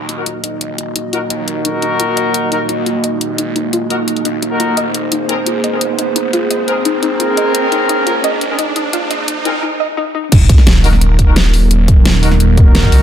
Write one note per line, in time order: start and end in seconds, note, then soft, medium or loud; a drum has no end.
0.00 0.37 D#2 loud
0.00 9.59 A#3 medium
0.00 9.59 D#4 medium
0.00 4.73 F#4 medium
0.00 4.73 D#5 medium
0.00 riser medium
0.09 0.17 D#4 medium
0.09 closed hi-hat medium
0.18 0.22 D#4 medium
0.18 0.22 F#4 medium
0.18 0.22 A#4 medium
0.26 0.31 F4 medium
0.26 closed hi-hat medium
0.37 0.64 D2 loud
0.44 0.52 D#5 medium
0.44 closed hi-hat medium
0.61 0.77 C#2 loud
0.61 closed hi-hat medium
0.78 1.29 D#1 loud
0.78 0.91 D#4 medium
0.78 closed hi-hat medium
0.96 1.04 D#4 medium
0.96 closed hi-hat medium
1.13 1.18 D#4 medium
1.13 1.18 F4 medium
1.13 1.18 F#4 medium
1.13 1.18 A#4 loud
1.13 closed hi-hat medium
1.30 1.81 D#2 medium
1.30 1.39 D#5 medium
1.30 closed hi-hat medium
1.48 2.50 D#4 medium
1.48 2.50 F#4 medium
1.48 2.50 A#4 loud
1.48 closed hi-hat medium
1.65 1.77 D#4 medium
1.65 closed hi-hat medium
1.82 1.98 A#1 loud
1.82 1.91 D#4 medium
1.82 closed hi-hat medium
2.00 2.16 D#1 loud
2.00 2.05 F4 medium
2.00 closed hi-hat medium
2.17 3.16 D#2 loud
2.17 2.25 D#5 medium
2.17 closed hi-hat medium
2.34 closed hi-hat medium
2.52 2.56 D#4 loud
2.52 2.64 D#4 medium
2.52 2.56 F#4 medium
2.52 2.56 A#4 loud
2.52 closed hi-hat medium
2.69 2.77 D#4 medium
2.69 closed hi-hat medium
2.86 2.91 F4 medium
2.86 closed hi-hat medium
3.04 3.12 D#5 medium
3.04 closed hi-hat medium
3.16 3.38 C#2 loud
3.21 closed hi-hat medium
3.38 3.54 B1 loud
3.38 3.51 D#4 medium
3.38 closed hi-hat medium
3.56 4.06 D#1 loud
3.56 3.64 D#4 medium
3.56 closed hi-hat medium
3.73 3.78 F4 medium
3.73 closed hi-hat medium
3.90 3.95 D#4 medium
3.90 3.95 F#4 medium
3.90 3.95 A#4 loud
3.90 3.99 D#5 medium
3.90 closed hi-hat medium
4.08 closed hi-hat medium
4.16 closed hi-hat soft
4.25 4.76 D#2 loud
4.25 4.37 D#4 medium
4.25 closed hi-hat medium
4.42 4.51 D#4 medium
4.42 closed hi-hat medium
4.51 4.76 D#4 medium
4.51 4.76 F#4 medium
4.51 4.76 A#4 loud
4.60 4.65 F4 medium
4.60 closed hi-hat medium
4.77 4.93 G#1 loud
4.77 9.59 G#4 medium
4.77 9.59 C5 medium
4.77 4.85 D#5 medium
4.77 closed hi-hat medium
4.94 5.93 G#1 loud
4.94 closed hi-hat medium
5.12 5.24 D#4 medium
5.12 closed hi-hat medium
5.29 5.34 C4 loud
5.29 5.37 D#4 medium
5.29 5.34 G#4 medium
5.29 5.34 A#4 loud
5.29 closed hi-hat medium
5.46 5.51 F4 medium
5.46 closed hi-hat medium
5.64 5.72 D#5 medium
5.64 closed hi-hat medium
5.72 5.77 C4 medium
5.72 5.77 G#4 medium
5.72 5.77 A#4 medium
5.81 closed hi-hat medium
5.93 6.15 F#1 loud
5.98 6.11 D#4 medium
5.98 closed hi-hat medium
6.15 6.32 E1 loud
6.15 6.24 D#4 medium
6.15 closed hi-hat loud
6.33 6.84 G#1 loud
6.33 6.38 F4 medium
6.33 closed hi-hat medium
6.51 6.59 D#5 medium
6.51 closed hi-hat loud
6.68 6.73 C4 medium
6.68 6.73 G#4 medium
6.68 6.73 A#4 loud
6.68 closed hi-hat medium
6.85 7.36 G#1 medium
6.85 6.98 D#4 medium
6.85 closed hi-hat medium
7.03 8.05 C4 medium
7.03 7.11 D#4 medium
7.03 8.05 G#4 medium
7.03 8.05 A#4 loud
7.03 closed hi-hat medium
7.20 7.25 F4 medium
7.20 closed hi-hat medium
7.37 7.45 D#5 medium
7.37 closed hi-hat medium
7.55 closed hi-hat loud
7.72 9.09 G#1 loud
7.72 7.84 D#4 medium
7.72 closed hi-hat medium
7.89 7.98 D#4 medium
7.89 closed hi-hat loud
8.07 8.11 C4 loud
8.07 8.12 F4 medium
8.07 8.11 G#4 medium
8.07 8.11 A#4 loud
8.07 closed hi-hat medium
8.24 8.32 D#5 medium
8.24 closed hi-hat medium
8.41 closed hi-hat medium
8.50 8.55 C4 medium
8.50 8.55 G#4 medium
8.50 8.55 A#4 medium
8.59 8.71 D#4 medium
8.59 closed hi-hat loud
8.76 8.84 D#4 medium
8.76 closed hi-hat medium
8.93 8.98 F4 medium
8.93 closed hi-hat loud
9.11 9.61 G#1 loud
9.11 9.19 D#5 medium
9.11 closed hi-hat medium
9.28 closed hi-hat loud
9.45 9.50 C4 medium
9.45 9.58 D#4 medium
9.45 9.50 G#4 medium
9.45 9.50 A#4 loud
9.45 closed hi-hat medium
9.63 9.71 D#4 medium
9.80 9.85 D#5 loud
9.97 10.02 D#4 loud
10.15 10.20 D#4 medium
10.32 10.48 D#1 loud
10.32 13.03 F#3 medium
10.32 13.03 A#3 medium
10.32 13.03 D#4 medium
10.32 13.03 A#4 medium
10.32 kick loud
10.32 closed hi-hat loud
10.32 crash loud
10.32 impact medium
10.49 kick loud
10.49 closed hi-hat medium
10.58 snare medium
10.67 12.04 D#1 loud
10.67 snare loud
10.67 closed hi-hat loud
10.84 10.89 D#4 loud
10.84 10.89 F#4 medium
10.84 10.89 A#4 loud
10.84 open hi-hat medium
10.93 snare soft
11.01 closed hi-hat loud
11.19 kick medium
11.19 closed hi-hat medium
11.27 11.32 D#4 medium
11.27 11.32 F#4 medium
11.27 11.32 A#4 medium
11.36 snare loud
11.36 closed hi-hat loud
11.54 open hi-hat medium
11.71 closed hi-hat loud
11.88 kick loud
11.88 closed hi-hat medium
12.05 12.39 D#1 loud
12.05 snare loud
12.05 closed hi-hat loud
12.23 12.28 D#4 medium
12.23 12.28 F#4 medium
12.23 12.28 A#4 loud
12.23 open hi-hat medium
12.31 snare medium
12.40 12.91 D#1 loud
12.40 closed hi-hat medium
12.57 13.03 D#4 medium
12.57 13.03 F#4 medium
12.57 13.03 A#4 loud
12.57 kick loud
12.57 closed hi-hat medium
12.75 snare loud
12.75 closed hi-hat loud
12.83 kick medium
12.92 13.03 C#2 medium
12.92 open hi-hat medium